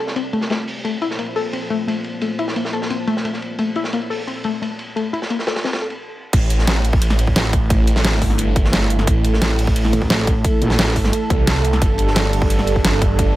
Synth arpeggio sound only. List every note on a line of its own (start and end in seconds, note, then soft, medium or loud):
0.16 0.22 C4 medium
0.33 0.39 A3 loud
0.50 0.54 A3 medium
0.85 0.94 A3 medium
1.02 1.05 E4 loud
1.19 1.25 A#3 medium
1.36 1.45 A4 loud
1.53 1.59 C4 medium
1.70 1.76 A3 loud
1.87 1.91 A3 medium
2.22 2.31 A3 medium
2.39 2.43 E4 loud
2.56 2.62 A#3 medium
2.73 2.82 A4 loud
2.90 2.96 C4 medium
3.07 3.14 A3 loud
3.25 3.28 A3 medium
3.59 3.68 A3 medium
3.76 3.80 E4 loud
3.93 3.99 A#3 medium
4.10 4.19 A4 loud
4.27 4.34 C4 medium
4.45 4.51 A3 loud
4.62 4.65 A3 medium
4.96 5.05 A3 medium
5.13 5.17 E4 loud
5.30 5.36 A#3 medium
5.47 5.57 A4 loud
5.65 5.71 C4 medium
5.82 5.85 A4 medium